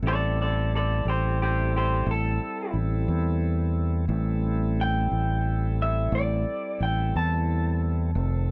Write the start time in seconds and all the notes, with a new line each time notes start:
0.02 A1 G3 C4 E4 A4
0.07 A4 D5
0.41 A4 D5
0.75 A4 D5
1.05 A1 G4
1.09 C5
1.42 G4 C5
1.76 G4 C5
2.06 A1
2.11 A4
2.73 A1
3.08 E2
4.08 A1 G3 C4 E4 A4
4.81 G5
5.11 A1
5.82 E5
6.12 A1 D5
6.80 A1 G5
7.15 E2 A5
8.15 F1 D#3 F3 C4 A4